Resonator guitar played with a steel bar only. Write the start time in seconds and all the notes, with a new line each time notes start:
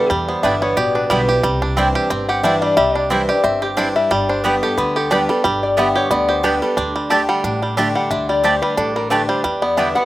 Already playing: A4
0.11 G4
0.29 C5
0.43 E5
0.62 C#5
0.77 D5
0.95 B4
2.10 G5
2.29 F#5
2.43 E5
2.62 D5
2.77 E5
2.95 D5
3.11 B4
3.30 D5
3.44 E5
3.63 G4
3.78 C5
3.96 E5
4.11 D5
4.29 C5
4.44 B4
4.63 A4
4.77 B4
4.96 A4
5.12 B4
5.30 A4
5.45 B4
5.63 D5
5.78 E5
5.97 C#5
6.11 D5
6.30 C5
6.44 B4
6.63 A4
6.78 G4
7.10 A5
7.29 F#5
7.43 G5
7.96 F#5
8.11 E5
8.29 D5
8.44 C5
8.62 B4
8.77 A4
8.96 A#4
9.10 B4
9.29 C5
9.44 B4
9.62 D5
9.77 E5
9.95 F#5